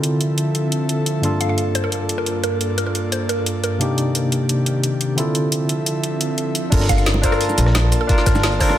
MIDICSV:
0, 0, Header, 1, 6, 480
1, 0, Start_track
1, 0, Key_signature, -2, "minor"
1, 0, Tempo, 342857
1, 1729, Time_signature, 4, 2, 24, 8
1, 12292, End_track
2, 0, Start_track
2, 0, Title_t, "Synth pluck"
2, 0, Program_c, 0, 84
2, 1968, Note_on_c, 0, 77, 82
2, 2046, Note_off_c, 0, 77, 0
2, 2091, Note_on_c, 0, 77, 70
2, 2167, Note_off_c, 0, 77, 0
2, 2451, Note_on_c, 0, 72, 90
2, 2547, Note_off_c, 0, 72, 0
2, 2573, Note_on_c, 0, 70, 90
2, 2859, Note_off_c, 0, 70, 0
2, 3052, Note_on_c, 0, 70, 85
2, 3339, Note_off_c, 0, 70, 0
2, 3409, Note_on_c, 0, 70, 83
2, 3698, Note_off_c, 0, 70, 0
2, 3888, Note_on_c, 0, 70, 88
2, 3966, Note_off_c, 0, 70, 0
2, 4011, Note_on_c, 0, 70, 73
2, 4087, Note_off_c, 0, 70, 0
2, 4370, Note_on_c, 0, 72, 86
2, 4586, Note_off_c, 0, 72, 0
2, 4608, Note_on_c, 0, 70, 84
2, 4897, Note_off_c, 0, 70, 0
2, 5091, Note_on_c, 0, 70, 84
2, 5379, Note_off_c, 0, 70, 0
2, 9650, Note_on_c, 0, 77, 90
2, 9727, Note_off_c, 0, 77, 0
2, 9772, Note_on_c, 0, 77, 78
2, 9847, Note_off_c, 0, 77, 0
2, 10132, Note_on_c, 0, 72, 92
2, 10227, Note_off_c, 0, 72, 0
2, 10251, Note_on_c, 0, 70, 91
2, 10538, Note_off_c, 0, 70, 0
2, 11210, Note_on_c, 0, 70, 88
2, 11498, Note_off_c, 0, 70, 0
2, 11570, Note_on_c, 0, 70, 92
2, 12026, Note_off_c, 0, 70, 0
2, 12050, Note_on_c, 0, 72, 96
2, 12292, Note_off_c, 0, 72, 0
2, 12292, End_track
3, 0, Start_track
3, 0, Title_t, "Tine electric piano"
3, 0, Program_c, 1, 4
3, 0, Control_c, 1, 64, 127
3, 0, Note_on_c, 1, 50, 67
3, 0, Note_on_c, 1, 60, 64
3, 0, Note_on_c, 1, 64, 64
3, 0, Note_on_c, 1, 65, 65
3, 0, Note_on_c, 1, 69, 77
3, 1686, Note_off_c, 1, 50, 0
3, 1693, Note_off_c, 1, 60, 0
3, 1698, Note_on_c, 1, 43, 69
3, 1700, Note_off_c, 1, 64, 0
3, 1708, Note_off_c, 1, 65, 0
3, 1714, Note_on_c, 1, 58, 65
3, 1715, Note_off_c, 1, 69, 0
3, 1728, Note_on_c, 1, 62, 66
3, 1742, Note_on_c, 1, 65, 63
3, 1750, Control_c, 1, 64, 0
3, 1757, Note_on_c, 1, 69, 76
3, 1996, Control_c, 1, 64, 127
3, 5285, Note_off_c, 1, 43, 0
3, 5293, Note_off_c, 1, 58, 0
3, 5300, Note_off_c, 1, 62, 0
3, 5300, Note_on_c, 1, 48, 70
3, 5307, Note_off_c, 1, 65, 0
3, 5315, Note_off_c, 1, 69, 0
3, 5315, Note_on_c, 1, 58, 64
3, 5328, Note_on_c, 1, 62, 63
3, 5343, Note_on_c, 1, 63, 64
3, 5346, Control_c, 1, 64, 0
3, 5358, Note_on_c, 1, 67, 77
3, 5580, Control_c, 1, 64, 127
3, 7206, Note_off_c, 1, 48, 0
3, 7213, Note_off_c, 1, 58, 0
3, 7220, Note_off_c, 1, 62, 0
3, 7220, Note_on_c, 1, 50, 70
3, 7228, Note_off_c, 1, 63, 0
3, 7234, Note_on_c, 1, 60, 65
3, 7235, Note_off_c, 1, 67, 0
3, 7248, Note_on_c, 1, 64, 66
3, 7263, Note_on_c, 1, 65, 64
3, 7268, Control_c, 1, 64, 0
3, 7277, Note_on_c, 1, 69, 77
3, 7547, Control_c, 1, 64, 127
3, 9366, Note_off_c, 1, 50, 0
3, 9373, Note_off_c, 1, 60, 0
3, 9380, Note_off_c, 1, 64, 0
3, 9381, Note_on_c, 1, 62, 77
3, 9384, Note_off_c, 1, 65, 0
3, 9395, Note_off_c, 1, 69, 0
3, 9401, Note_on_c, 1, 65, 70
3, 9420, Note_on_c, 1, 69, 68
3, 9429, Control_c, 1, 64, 0
3, 9440, Note_on_c, 1, 70, 82
3, 9658, Control_c, 1, 64, 127
3, 10087, Note_off_c, 1, 62, 0
3, 10097, Note_off_c, 1, 65, 0
3, 10101, Note_on_c, 1, 62, 84
3, 10106, Note_off_c, 1, 69, 0
3, 10116, Note_off_c, 1, 70, 0
3, 10120, Note_on_c, 1, 65, 80
3, 10139, Note_on_c, 1, 69, 80
3, 10159, Note_on_c, 1, 70, 98
3, 11287, Note_off_c, 1, 62, 0
3, 11296, Note_off_c, 1, 65, 0
3, 11301, Note_on_c, 1, 62, 89
3, 11306, Note_off_c, 1, 69, 0
3, 11316, Note_off_c, 1, 70, 0
3, 11320, Note_on_c, 1, 65, 82
3, 11339, Note_on_c, 1, 81, 84
3, 11359, Note_on_c, 1, 70, 97
3, 12007, Note_off_c, 1, 62, 0
3, 12016, Note_off_c, 1, 65, 0
3, 12026, Note_off_c, 1, 81, 0
3, 12035, Note_on_c, 1, 62, 92
3, 12036, Note_off_c, 1, 70, 0
3, 12045, Note_on_c, 1, 65, 82
3, 12054, Note_on_c, 1, 69, 82
3, 12064, Note_on_c, 1, 70, 103
3, 12121, Note_off_c, 1, 62, 0
3, 12126, Note_off_c, 1, 65, 0
3, 12131, Note_off_c, 1, 69, 0
3, 12135, Note_off_c, 1, 70, 0
3, 12292, End_track
4, 0, Start_track
4, 0, Title_t, "Analog synth pad"
4, 0, Program_c, 2, 89
4, 0, Note_on_c, 2, 50, 76
4, 0, Note_on_c, 2, 53, 70
4, 0, Note_on_c, 2, 60, 70
4, 0, Note_on_c, 2, 69, 80
4, 0, Note_on_c, 2, 76, 67
4, 1707, Note_off_c, 2, 50, 0
4, 1707, Note_off_c, 2, 60, 0
4, 1708, Note_off_c, 2, 53, 0
4, 1708, Note_off_c, 2, 76, 0
4, 1729, Note_on_c, 2, 43, 79
4, 1730, Note_on_c, 2, 58, 71
4, 1730, Note_on_c, 2, 74, 72
4, 1731, Note_on_c, 2, 65, 70
4, 5273, Note_off_c, 2, 69, 0
4, 5293, Note_off_c, 2, 43, 0
4, 5294, Note_off_c, 2, 65, 0
4, 5330, Note_on_c, 2, 48, 73
4, 5331, Note_on_c, 2, 51, 70
4, 5331, Note_on_c, 2, 67, 85
4, 7194, Note_off_c, 2, 58, 0
4, 7195, Note_off_c, 2, 74, 0
4, 7230, Note_off_c, 2, 48, 0
4, 7231, Note_off_c, 2, 51, 0
4, 7231, Note_off_c, 2, 67, 0
4, 7248, Note_on_c, 2, 50, 77
4, 7249, Note_on_c, 2, 53, 72
4, 7249, Note_on_c, 2, 60, 70
4, 7249, Note_on_c, 2, 69, 84
4, 7249, Note_on_c, 2, 76, 71
4, 9387, Note_off_c, 2, 50, 0
4, 9387, Note_off_c, 2, 53, 0
4, 9387, Note_off_c, 2, 60, 0
4, 9387, Note_off_c, 2, 76, 0
4, 9388, Note_off_c, 2, 69, 0
4, 9411, Note_on_c, 2, 58, 81
4, 9411, Note_on_c, 2, 65, 78
4, 9411, Note_on_c, 2, 81, 93
4, 12292, Note_off_c, 2, 58, 0
4, 12292, Note_off_c, 2, 65, 0
4, 12292, Note_off_c, 2, 81, 0
4, 12292, End_track
5, 0, Start_track
5, 0, Title_t, "Upright bass"
5, 0, Program_c, 3, 32
5, 9410, Note_on_c, 3, 31, 96
5, 10111, Note_off_c, 3, 31, 0
5, 10610, Note_on_c, 3, 34, 102
5, 11071, Note_off_c, 3, 34, 0
5, 11569, Note_on_c, 3, 31, 100
5, 12281, Note_off_c, 3, 31, 0
5, 12292, End_track
6, 0, Start_track
6, 0, Title_t, "Drums"
6, 49, Note_on_c, 9, 42, 78
6, 189, Note_off_c, 9, 42, 0
6, 289, Note_on_c, 9, 42, 66
6, 429, Note_off_c, 9, 42, 0
6, 528, Note_on_c, 9, 42, 78
6, 668, Note_off_c, 9, 42, 0
6, 767, Note_on_c, 9, 42, 65
6, 907, Note_off_c, 9, 42, 0
6, 1008, Note_on_c, 9, 42, 82
6, 1148, Note_off_c, 9, 42, 0
6, 1248, Note_on_c, 9, 42, 66
6, 1388, Note_off_c, 9, 42, 0
6, 1488, Note_on_c, 9, 42, 81
6, 1628, Note_off_c, 9, 42, 0
6, 1728, Note_on_c, 9, 42, 67
6, 1868, Note_off_c, 9, 42, 0
6, 1968, Note_on_c, 9, 42, 77
6, 2108, Note_off_c, 9, 42, 0
6, 2209, Note_on_c, 9, 42, 66
6, 2349, Note_off_c, 9, 42, 0
6, 2450, Note_on_c, 9, 42, 79
6, 2590, Note_off_c, 9, 42, 0
6, 2689, Note_on_c, 9, 42, 67
6, 2829, Note_off_c, 9, 42, 0
6, 2929, Note_on_c, 9, 42, 82
6, 3069, Note_off_c, 9, 42, 0
6, 3170, Note_on_c, 9, 42, 68
6, 3310, Note_off_c, 9, 42, 0
6, 3409, Note_on_c, 9, 42, 78
6, 3549, Note_off_c, 9, 42, 0
6, 3650, Note_on_c, 9, 42, 70
6, 3790, Note_off_c, 9, 42, 0
6, 3890, Note_on_c, 9, 42, 82
6, 4030, Note_off_c, 9, 42, 0
6, 4130, Note_on_c, 9, 42, 69
6, 4270, Note_off_c, 9, 42, 0
6, 4370, Note_on_c, 9, 42, 85
6, 4510, Note_off_c, 9, 42, 0
6, 4610, Note_on_c, 9, 42, 72
6, 4750, Note_off_c, 9, 42, 0
6, 4850, Note_on_c, 9, 42, 82
6, 4990, Note_off_c, 9, 42, 0
6, 5090, Note_on_c, 9, 42, 72
6, 5230, Note_off_c, 9, 42, 0
6, 5331, Note_on_c, 9, 42, 84
6, 5471, Note_off_c, 9, 42, 0
6, 5570, Note_on_c, 9, 42, 71
6, 5710, Note_off_c, 9, 42, 0
6, 5810, Note_on_c, 9, 42, 86
6, 5950, Note_off_c, 9, 42, 0
6, 6050, Note_on_c, 9, 42, 75
6, 6190, Note_off_c, 9, 42, 0
6, 6290, Note_on_c, 9, 42, 87
6, 6430, Note_off_c, 9, 42, 0
6, 6529, Note_on_c, 9, 42, 74
6, 6669, Note_off_c, 9, 42, 0
6, 6769, Note_on_c, 9, 42, 88
6, 6909, Note_off_c, 9, 42, 0
6, 7010, Note_on_c, 9, 42, 77
6, 7150, Note_off_c, 9, 42, 0
6, 7249, Note_on_c, 9, 42, 89
6, 7389, Note_off_c, 9, 42, 0
6, 7489, Note_on_c, 9, 42, 74
6, 7629, Note_off_c, 9, 42, 0
6, 7728, Note_on_c, 9, 42, 88
6, 7868, Note_off_c, 9, 42, 0
6, 7969, Note_on_c, 9, 42, 73
6, 8109, Note_off_c, 9, 42, 0
6, 8209, Note_on_c, 9, 42, 90
6, 8349, Note_off_c, 9, 42, 0
6, 8449, Note_on_c, 9, 42, 79
6, 8589, Note_off_c, 9, 42, 0
6, 8690, Note_on_c, 9, 42, 92
6, 8830, Note_off_c, 9, 42, 0
6, 8930, Note_on_c, 9, 42, 77
6, 9070, Note_off_c, 9, 42, 0
6, 9170, Note_on_c, 9, 42, 86
6, 9310, Note_off_c, 9, 42, 0
6, 9405, Note_on_c, 9, 42, 91
6, 9410, Note_on_c, 9, 36, 116
6, 9411, Note_off_c, 9, 42, 0
6, 9411, Note_on_c, 9, 42, 82
6, 9411, Note_on_c, 9, 49, 102
6, 9523, Note_on_c, 9, 38, 57
6, 9550, Note_off_c, 9, 36, 0
6, 9551, Note_off_c, 9, 42, 0
6, 9551, Note_off_c, 9, 49, 0
6, 9650, Note_on_c, 9, 36, 109
6, 9650, Note_on_c, 9, 42, 98
6, 9650, Note_on_c, 9, 82, 58
6, 9653, Note_off_c, 9, 38, 0
6, 9653, Note_off_c, 9, 42, 0
6, 9653, Note_on_c, 9, 38, 46
6, 9653, Note_on_c, 9, 42, 68
6, 9658, Note_on_c, 9, 60, 53
6, 9772, Note_off_c, 9, 82, 0
6, 9772, Note_on_c, 9, 82, 29
6, 9790, Note_off_c, 9, 36, 0
6, 9793, Note_off_c, 9, 38, 0
6, 9793, Note_off_c, 9, 42, 0
6, 9798, Note_off_c, 9, 60, 0
6, 9888, Note_on_c, 9, 38, 120
6, 9889, Note_off_c, 9, 38, 0
6, 9889, Note_on_c, 9, 38, 124
6, 9889, Note_on_c, 9, 42, 82
6, 9892, Note_off_c, 9, 42, 0
6, 9892, Note_on_c, 9, 42, 96
6, 9912, Note_off_c, 9, 82, 0
6, 9997, Note_on_c, 9, 60, 72
6, 10029, Note_off_c, 9, 38, 0
6, 10032, Note_off_c, 9, 42, 0
6, 10129, Note_on_c, 9, 42, 101
6, 10129, Note_on_c, 9, 82, 59
6, 10130, Note_on_c, 9, 36, 58
6, 10133, Note_off_c, 9, 42, 0
6, 10133, Note_on_c, 9, 42, 67
6, 10137, Note_off_c, 9, 60, 0
6, 10250, Note_on_c, 9, 37, 58
6, 10253, Note_off_c, 9, 42, 0
6, 10253, Note_on_c, 9, 42, 44
6, 10269, Note_off_c, 9, 82, 0
6, 10270, Note_off_c, 9, 36, 0
6, 10369, Note_off_c, 9, 42, 0
6, 10369, Note_on_c, 9, 42, 84
6, 10382, Note_off_c, 9, 42, 0
6, 10382, Note_on_c, 9, 42, 82
6, 10390, Note_off_c, 9, 37, 0
6, 10490, Note_on_c, 9, 82, 28
6, 10495, Note_on_c, 9, 60, 49
6, 10522, Note_off_c, 9, 42, 0
6, 10609, Note_off_c, 9, 82, 0
6, 10609, Note_on_c, 9, 42, 100
6, 10609, Note_on_c, 9, 82, 59
6, 10610, Note_off_c, 9, 42, 0
6, 10610, Note_on_c, 9, 42, 74
6, 10635, Note_off_c, 9, 60, 0
6, 10729, Note_on_c, 9, 38, 46
6, 10730, Note_on_c, 9, 37, 56
6, 10749, Note_off_c, 9, 82, 0
6, 10750, Note_off_c, 9, 42, 0
6, 10846, Note_off_c, 9, 38, 0
6, 10846, Note_on_c, 9, 38, 125
6, 10849, Note_off_c, 9, 38, 0
6, 10849, Note_on_c, 9, 38, 122
6, 10849, Note_on_c, 9, 42, 86
6, 10853, Note_on_c, 9, 60, 83
6, 10865, Note_off_c, 9, 42, 0
6, 10865, Note_on_c, 9, 42, 91
6, 10870, Note_off_c, 9, 37, 0
6, 10989, Note_off_c, 9, 38, 0
6, 10993, Note_off_c, 9, 60, 0
6, 11005, Note_off_c, 9, 42, 0
6, 11085, Note_on_c, 9, 42, 66
6, 11089, Note_off_c, 9, 42, 0
6, 11089, Note_on_c, 9, 37, 36
6, 11089, Note_on_c, 9, 42, 101
6, 11089, Note_on_c, 9, 82, 58
6, 11229, Note_off_c, 9, 37, 0
6, 11229, Note_off_c, 9, 42, 0
6, 11229, Note_off_c, 9, 82, 0
6, 11329, Note_on_c, 9, 60, 49
6, 11330, Note_on_c, 9, 36, 127
6, 11330, Note_on_c, 9, 42, 83
6, 11331, Note_off_c, 9, 42, 0
6, 11331, Note_on_c, 9, 42, 81
6, 11451, Note_on_c, 9, 38, 38
6, 11469, Note_off_c, 9, 60, 0
6, 11470, Note_off_c, 9, 36, 0
6, 11471, Note_off_c, 9, 42, 0
6, 11565, Note_off_c, 9, 38, 0
6, 11565, Note_on_c, 9, 38, 49
6, 11570, Note_on_c, 9, 36, 110
6, 11570, Note_on_c, 9, 42, 92
6, 11570, Note_on_c, 9, 82, 59
6, 11573, Note_off_c, 9, 42, 0
6, 11573, Note_on_c, 9, 42, 69
6, 11686, Note_off_c, 9, 38, 0
6, 11686, Note_on_c, 9, 38, 50
6, 11690, Note_off_c, 9, 82, 0
6, 11690, Note_on_c, 9, 60, 86
6, 11690, Note_on_c, 9, 82, 28
6, 11710, Note_off_c, 9, 36, 0
6, 11713, Note_off_c, 9, 42, 0
6, 11807, Note_off_c, 9, 38, 0
6, 11807, Note_on_c, 9, 38, 108
6, 11809, Note_off_c, 9, 38, 0
6, 11809, Note_on_c, 9, 38, 126
6, 11809, Note_on_c, 9, 42, 80
6, 11813, Note_off_c, 9, 42, 0
6, 11813, Note_on_c, 9, 42, 84
6, 11830, Note_off_c, 9, 60, 0
6, 11830, Note_off_c, 9, 82, 0
6, 11927, Note_off_c, 9, 42, 0
6, 11927, Note_on_c, 9, 42, 41
6, 11949, Note_off_c, 9, 38, 0
6, 12048, Note_on_c, 9, 46, 81
6, 12048, Note_on_c, 9, 82, 58
6, 12050, Note_on_c, 9, 36, 60
6, 12053, Note_off_c, 9, 42, 0
6, 12053, Note_on_c, 9, 42, 74
6, 12057, Note_on_c, 9, 38, 36
6, 12169, Note_off_c, 9, 38, 0
6, 12169, Note_on_c, 9, 38, 50
6, 12170, Note_on_c, 9, 37, 59
6, 12172, Note_on_c, 9, 60, 53
6, 12188, Note_off_c, 9, 46, 0
6, 12188, Note_off_c, 9, 82, 0
6, 12190, Note_off_c, 9, 36, 0
6, 12193, Note_off_c, 9, 42, 0
6, 12292, Note_off_c, 9, 37, 0
6, 12292, Note_off_c, 9, 38, 0
6, 12292, Note_off_c, 9, 60, 0
6, 12292, End_track
0, 0, End_of_file